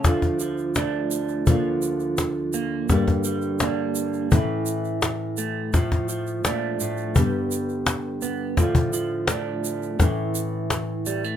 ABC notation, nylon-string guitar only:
X:1
M:4/4
L:1/8
Q:1/4=84
K:Dm
V:1 name="Nylon-string guitar"
[D,,D,A,DF]4 [D,,D,B,DF]4 | [G,,D,B,DG]4 [A,,E,A,^CE]4 | A,,2 B,, A,, [G,,D,=B,DG]4 | [A,,D,A,DF]4 [A,,E,A,^CE]4 |]